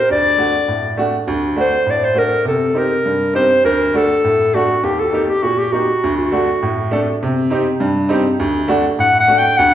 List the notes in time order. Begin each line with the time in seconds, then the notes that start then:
0.10 D2 D5
0.37 A3 D4 F#4
0.68 A2
0.97 A3 D4 F#4
1.28 D2
1.56 A3 D4 F#4
1.60 C5
1.86 A2 D5
2.04 C5
2.14 A3 D4 F#4
2.18 A#4
2.45 C3 A4
2.75 C4 D#4 G4 A#4
3.05 G2
3.34 C4 D#4 G4 C5
3.64 D2 A#4
3.94 A3 D4 F#4 A4
4.24 A2
4.54 A3 D4 F#4
4.83 D#2 G4
4.99 A4
5.12 A#3 D#4 G4
5.25 A4
5.29 G4
5.43 A#2 F#4
5.59 G4
5.72 A#3 D#4 F#4 G4
6.03 D2
6.17 F#4
6.32 A3 D4 F#4
6.62 A2
6.91 A3 D4 A4
7.23 C3
7.50 C4 D#4 G4
7.80 G2
8.09 C4 D#4 G4
8.40 D2
8.68 A3 D4 F#4
8.99 A2 F#5
9.20 F#5
9.28 A3 D4 F#4
9.38 G5
9.57 D2 F#5